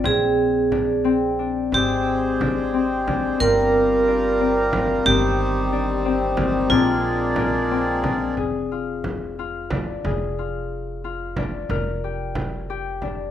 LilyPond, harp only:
\new Staff \with { instrumentName = "Harp" } { \time 5/8 \key f \dorian \tempo 4 = 90 c'4 d'8 c'8 d'8 | c'4 d'8 c'8 d'8 | c'4 d'8 c'8 d'8 | c'4 d'8 c'8 d'8 |
c'4 d'8 c'8 d'8 | aes'8 f'4 f'8 d'8 | aes'8 f'4 f'8 d'8 | bes'8 g'4 g'8 d'8 | }